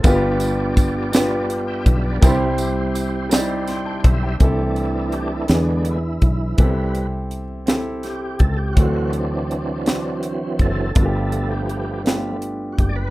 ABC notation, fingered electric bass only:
X:1
M:6/8
L:1/8
Q:3/8=55
K:C
V:1 name="Fingered electric bass" clef=bass
G,,,4- G,,, B,,, | C,,4- C,, B,,, | C,,3 E,,2 B,,, | C,,4- C,, _D,, |
D,,4- D,, ^F,,, | G,,,4- G,,, ^F,,, |]